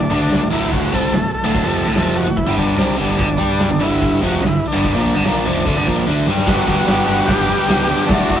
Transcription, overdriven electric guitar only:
0.00 D2
0.10 D3 A3 D4
0.40 D2 A2
0.50 D2 A2 D3
0.92 C3 G3 C4
1.13 D2 A2
1.44 D2 A2 D3
1.64 F2 C3 F3
1.85 D2 A2
1.96 F2 C3 F3
2.26 D2 A2
2.47 G2 D3 G3
2.77 C3 G3 C4
2.98 G2 D3 G3
3.18 G2 D3
3.30 G2 D3
3.38 G3 D4 G4
3.70 G2 D3
3.80 G2 D3 G3
4.22 F2 C3 F3
4.42 G2 D3
4.72 G2 D3 G3
4.94 A#2 F3 A#3
5.14 G2 D3
5.24 A#2 F3 A#3
5.45 F2 C3 F3
5.65 D3 A3
5.75 G2 D3
5.87 A#2 F3 A#3
6.07 D3 A3 D4
6.28 G3 D4 G4
6.47 G2 D3 G3 B3 D4 G4
6.67 G3 B3 D4 G4
6.86 G3 B3 D4
6.90 G4
7.06 D3 G3 B3 D4 G4
7.11 G2
7.27 G3 B3 D4
7.31 G4
7.48 B3 D4 G4
7.52 G3
7.67 G2 D3 G3 B3 D4
7.71 G4
7.88 B3 D4 G4
7.92 G3
8.08 D2 A2 D3 A3
8.12 F#4
8.29 A3 F#4
8.34 D3

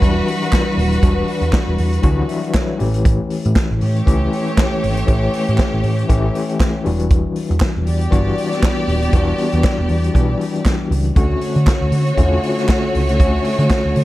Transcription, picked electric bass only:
0.02 E1
0.78 D#1
1.03 E1
1.42 E2
1.68 E1
1.79 E2
2.04 D2
2.81 A1
3.46 A2
3.71 A1
3.82 A2
4.07 C#2
4.84 G#1
5.09 A1
5.49 A2
5.73 A1
5.84 A2
6.10 A1
6.87 E1
7.51 E2
7.77 E1
7.88 E2
8.13 G1
8.88 D#1
9.13 E1
9.53 E2
9.79 E1
9.90 E2
10.15 B1
10.91 C#2
11.16 D2
11.56 D3
11.81 D2
11.92 D3
12.17 E2
12.96 C#2
13.20 D2
13.59 D3
13.85 D2
13.97 D3

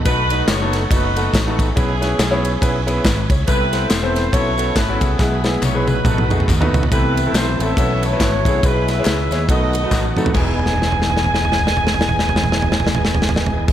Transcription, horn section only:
0.06 D#4 F#4 B4
0.49 F#4 A4 C#5
0.93 D#4 F#4 B4
1.60 C#4 E4 G#4
3.48 E4 B4
3.89 C5
4.15 C5
4.33 E4 A4 C#5
4.75 B4
5.01 B3 E4 G#4
5.63 C#5
5.87 D#4 F#4 B4
6.93 E4 B4
7.35 C5
7.61 A4 C#5 E5
8.03 E4 A4 C#5
8.65 E4 G#4 B4
8.91 G#4 B4 E5
9.51 F#4 A4 D#5
10.35 G#5

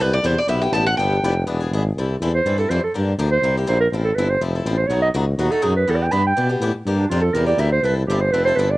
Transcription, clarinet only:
2.35 C5
2.59 A4
2.69 C5
2.84 A4
3.32 C5
3.58 G4
3.68 C5
3.80 A#4
4.05 A4
4.15 B4
4.29 C5
4.77 C5
4.87 C#5
5.02 D#5
5.39 F#4
5.51 A4
5.63 G#4
5.76 B4
5.90 A4
5.96 D5
6.03 G5
6.12 B5
6.27 G5
6.98 D4
7.10 F4
7.21 A4
7.34 A#4
7.46 D5
7.60 E5
7.72 C5
7.83 B4
7.96 E4
8.07 G4
8.20 C5
8.32 B4
8.45 C5
8.56 B4
8.70 D5

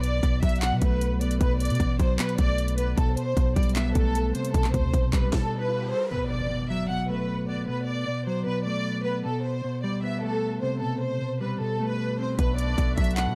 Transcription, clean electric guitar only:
Already playing: B2
0.23 B2
0.43 F#3
0.62 B2
0.82 A3
1.21 B3
1.41 B2
1.80 B2
2.00 F#3
2.19 B2
2.39 A3
2.78 B3
2.98 B2
3.37 B2
3.56 G3
3.76 B3
3.96 A3
4.35 C3
4.54 B2
4.94 B2
5.13 G3
6.11 B2
6.51 B2
6.70 F#3
6.90 B2
7.09 A3
7.48 B3
7.68 B2
8.07 B2
8.27 F#3
8.46 B2
8.66 A3
9.05 B3
9.25 B2
9.64 B2
9.84 G3
10.03 B3
10.23 A3
10.62 C3
10.82 B2
11.21 B2
11.41 G3
11.60 B2
11.80 A3
12.19 C4
12.39 B2
12.78 B2
12.98 F#3
13.17 B2

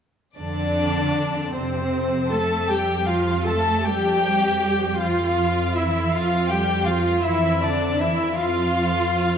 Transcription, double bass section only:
0.38 F2
1.53 F2
2.69 F2
3.87 F2
5.03 F2
6.14 F2
7.25 F2
8.39 F2

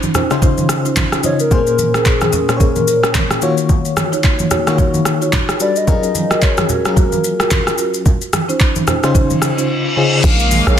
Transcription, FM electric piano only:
0.30 C#3 C#4 D#4 F4 C5
1.24 C#3 C#4 D#4 F4 D#5
1.51 A#2 A#3 C4 G#4 C5
1.58 C#4
2.49 A#2 A#3 C#4 G#4 C5
2.57 C#5
3.42 D#3 A#3 F4 F#4 C#5
4.67 D#3 A#3 F4 F#4 C#5
5.60 G3 D4 F#4 A4 B4
5.87 F#3 C#4 F4 G#4 A#4
6.85 F#3 C#4 F4 G#4 A#4
9.03 C#3 C#4 D#4 F4 C5
9.97 C#3 C#4 D#4 F4 G#4

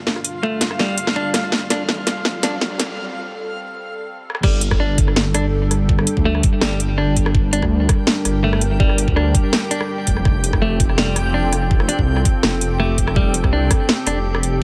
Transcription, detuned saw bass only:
4.43 G1
6.17 D2
6.62 G1
7.62 D2
8.25 G1
9.08 D2
10.07 F1
10.25 F1
11.99 C2
12.44 F1
13.44 C2
14.07 F1

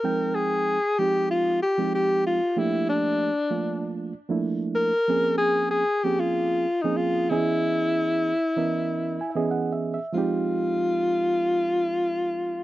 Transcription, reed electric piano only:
0.03 F3 G#3 C4 D#4 G5
0.99 F3 G#3 C4 D#4 G4
1.78 F3 G#3 C4 D#4 G4
2.56 F3 A3 A#3 D4 G4
3.50 F3 A3 A#3 D4 F4
4.29 F3 A3 A#3 D4 E4
5.08 F3 A#3 C4 C#4 G#4
6.04 F3 A#3 C4 C#4 G#4
6.84 F3 A#3 C4 C#4 G#4
7.31 E3 B3 C#4 G#4 D#5
8.57 E3 B3 C#4 A#4 D#5
9.21 G#5
9.30 E5
9.35 E3 B3 C#4 G#4 D#5
9.51 F#5
9.73 E5
9.94 E5
10.13 F3 G#3 C4
10.17 D#4 G4

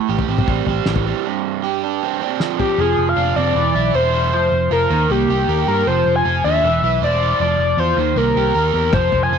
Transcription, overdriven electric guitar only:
Already playing: A2
0.09 G4
0.28 C4
0.48 G3
0.69 C4
0.87 E3
1.07 G3
1.26 G2
1.64 G4
1.84 D4
2.03 C4
2.22 D4
2.40 F3
2.59 C4
2.79 F3
3.16 D4
3.37 C4
3.56 E3
3.75 E4
3.94 C5
4.13 E4
4.32 F3
4.71 F4
4.90 D#3
5.10 A#3
5.30 G4
5.49 A#4
5.68 G4
5.87 F3
6.25 F4
6.45 D4
6.65 E3
6.84 E4
7.03 C5
7.22 E4
7.40 F3
7.78 F4
7.98 D#3
8.17 A#3
8.37 G4
8.55 A#4
8.74 G4
8.94 F3
9.33 F4

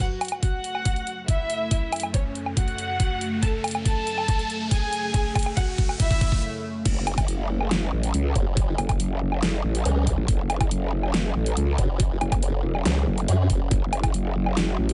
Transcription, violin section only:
0.00 F#4
0.43 F#4 F#5
1.28 E4 E5
2.14 C#4 C#5
2.57 F#4 F#5
3.42 A4 A5
3.85 A4 A5
4.71 G#4 G#5
5.57 F#4 F#5
6.00 E4 E5

